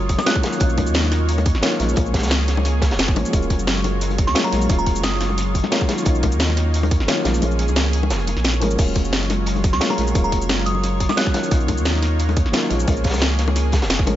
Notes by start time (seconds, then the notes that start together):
Already playing: F#1 F#3 G#3 A#3 C#4 F4 C#5
0.09 kick, closed hi-hat, shaker
0.18 D#6, snare, high bongo
0.25 F#3 G#3 A#3 C#4 F4 F#6, snare, closed hi-hat, shaker
0.35 kick, snare
0.42 D#3 F#3 A#3 C#4 D#4 F4, snare, closed hi-hat, high bongo
0.53 closed hi-hat, shaker
0.58 B1 D#3 F#3 A#3, kick, closed hi-hat, shaker
0.62 C#4 F4
0.70 shaker
0.78 kick, closed hi-hat, high bongo
0.87 D#2, shaker
0.94 snare, closed hi-hat, shaker
1.04 closed hi-hat, high bongo
1.12 snare, closed hi-hat
1.29 closed hi-hat, shaker
1.38 closed hi-hat, high bongo
1.46 kick, closed hi-hat, shaker
1.55 F#1, snare
1.61 D#3 F#3 A#3 C#4 F4, snare, closed hi-hat, high bongo, shaker
1.72 snare
1.78 A#1 F3 G#3 A#3 C#4 F4 G#4, snare, closed hi-hat
1.89 shaker
1.94 A#1 F3 G#3 A#3, kick, closed hi-hat, high bongo, shaker
1.98 C#4 F4
2.06 shaker
2.14 kick, snare, closed hi-hat
2.18 snare, closed hi-hat
2.22 C#2, snare, closed hi-hat, high bongo, shaker
2.27 snare, closed hi-hat
2.31 snare, closed hi-hat, shaker
2.48 snare, closed hi-hat
2.57 high bongo
2.65 snare, closed hi-hat, shaker
2.82 kick, snare, closed hi-hat, high bongo, shaker
2.91 F1, snare, closed hi-hat
2.99 F1, snare, closed hi-hat, shaker
3.08 kick, snare
3.15 A#1 F3 G#3 A#3 C#4 A#4, closed hi-hat, high bongo
3.25 shaker
3.30 D#1 F#3 G#3 A#3 F4, kick, closed hi-hat, shaker
3.35 C#4 F4
3.42 shaker
3.50 kick, closed hi-hat, high bongo
3.59 F#1, shaker
3.67 snare, closed hi-hat, shaker
3.77 closed hi-hat
3.84 closed hi-hat, high bongo
4.01 closed hi-hat, shaker
4.10 closed hi-hat, high bongo
4.18 kick, closed hi-hat, shaker
4.27 D#2 C#6, snare
4.34 F#3 G#3 A#3 C#4 F4, snare, closed hi-hat, shaker
4.44 A#5, snare, high bongo
4.51 A#1 F#3 G#3 A#3 C#4 F4, snare, closed hi-hat
4.62 shaker
4.67 D#1 F#3 G#3 A#3, kick, closed hi-hat, high bongo, shaker
4.71 C#4 F4
4.79 A#5, shaker
4.86 kick, closed hi-hat
4.96 F#1, shaker
5.03 D#6, snare, closed hi-hat, high bongo, shaker
5.21 snare, closed hi-hat
5.29 high bongo
5.38 snare, closed hi-hat, shaker
5.55 kick, closed hi-hat, shaker
5.64 snare, high bongo
5.70 F#3 G#3 A#3 C#4 F4, snare, closed hi-hat, shaker
5.81 kick, snare
5.87 D#3 F#3 A#3 C#4 D#4 F4, snare, closed hi-hat, high bongo
5.98 closed hi-hat, shaker
6.03 B1 D#3 F#3 A#3, kick, closed hi-hat, shaker
6.07 C#4 F4
6.15 shaker
6.23 kick, closed hi-hat, high bongo
6.32 D#2, shaker
6.40 snare, closed hi-hat, shaker
6.49 closed hi-hat, high bongo
6.57 snare, closed hi-hat
6.74 closed hi-hat, shaker
6.83 closed hi-hat, high bongo
6.91 kick, closed hi-hat, shaker
7.00 F#1, snare
7.07 D#3 F#3 A#3 C#4 F4, snare, closed hi-hat, high bongo, shaker
7.18 snare
7.24 A#1 F3 G#3 A#3 C#4 F4 G#4 C#5, snare, closed hi-hat
7.34 closed hi-hat, shaker
7.39 A#1 F3 G#3 A#3, closed hi-hat, high bongo, shaker
7.44 C#4 F4
7.51 shaker
7.59 closed hi-hat
7.68 C#2, high bongo, shaker
7.76 snare, closed hi-hat, shaker
7.93 closed hi-hat
8.03 high bongo
8.10 F1, snare, closed hi-hat, shaker
8.20 closed hi-hat
8.27 closed hi-hat, high bongo, shaker
8.37 A#1, snare, closed hi-hat
8.45 snare, closed hi-hat, shaker
8.54 snare, shaker
8.60 G#1 F3 G#3 A#3 C#4 A#4, closed hi-hat, high bongo
8.71 shaker
8.76 D#1 F#3 G#3 A#3 F4, kick, closed hi-hat, crash, shaker
8.80 C#4 F4
8.88 shaker
8.95 kick, closed hi-hat, high bongo
9.05 F#1, shaker
9.13 snare, closed hi-hat, shaker
9.22 closed hi-hat
9.30 snare, closed hi-hat, high bongo
9.46 closed hi-hat, shaker
9.56 closed hi-hat, high bongo
9.64 kick, closed hi-hat, shaker
9.73 D#2 C#6, snare
9.80 F#3 G#3 A#3 C#4 F4, snare, closed hi-hat, shaker
9.90 A#5, snare, high bongo
9.97 A#1 F#3 G#3 A#3 C#4 F4, snare, closed hi-hat
10.07 shaker
10.12 D#1 F#3 G#3 A#3, kick, closed hi-hat, high bongo, shaker
10.16 C#4 F4
10.24 A#5, shaker
10.32 kick, closed hi-hat
10.42 F#1, shaker
10.49 snare, closed hi-hat, high bongo, shaker
10.66 D#6, closed hi-hat
10.75 high bongo
10.84 snare, closed hi-hat, shaker
11.00 kick, closed hi-hat, shaker
11.09 D#6, snare, high bongo
11.16 F#3 G#3 A#3 C#4 F4 F#6, snare, closed hi-hat, shaker
11.26 kick, snare
11.33 D#3 F#3 A#3 C#4 D#4 F4, snare, closed hi-hat, high bongo
11.43 closed hi-hat, shaker
11.48 B1 D#3 F#3 A#3, kick, closed hi-hat, shaker
11.53 C#4 F4
11.61 shaker
11.68 kick, closed hi-hat, high bongo
11.78 D#2, shaker
11.85 snare, closed hi-hat, shaker
11.95 closed hi-hat, high bongo
12.03 snare, closed hi-hat
12.19 closed hi-hat, shaker
12.29 closed hi-hat, high bongo
12.37 kick, closed hi-hat, shaker
12.46 F#1, snare
12.52 D#3 F#3 A#3 C#4 F4, snare, closed hi-hat, high bongo, shaker
12.63 snare
12.69 A#1 F3 G#3 A#3 C#4 F4 G#4, snare, closed hi-hat
12.80 shaker
12.84 A#1 F3 G#3 A#3, kick, closed hi-hat, high bongo, shaker
12.89 C#4 F4
12.97 shaker
13.04 kick, snare, closed hi-hat
13.10 snare, closed hi-hat
13.14 C#2, snare, closed hi-hat, high bongo, shaker
13.18 snare, closed hi-hat
13.22 snare, closed hi-hat, shaker
13.39 snare, closed hi-hat
13.48 high bongo
13.56 snare, closed hi-hat, shaker
13.72 kick, snare, closed hi-hat, high bongo, shaker
13.82 F1, snare, closed hi-hat
13.90 F1, snare, closed hi-hat, shaker
13.99 kick, snare
14.05 A#1 F3 G#3 A#3 C#4 A#4, closed hi-hat, high bongo